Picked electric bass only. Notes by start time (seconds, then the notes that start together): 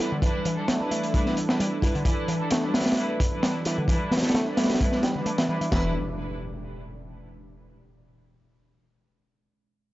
0.00 E4
0.12 D3
0.23 E3
0.45 E3
0.68 A3
0.80 D4
0.91 A3
1.60 G3
1.83 E4
1.95 D3
2.05 E3
2.28 E3
2.51 A3
2.64 D4
2.74 A3
3.43 G3
3.66 E4
3.78 D3
3.88 E3
4.11 E3
4.34 A3
4.46 D4
4.57 A3
5.03 G3
5.15 D3
5.26 A3
5.38 E3
5.49 E3
5.61 E3
5.72 E3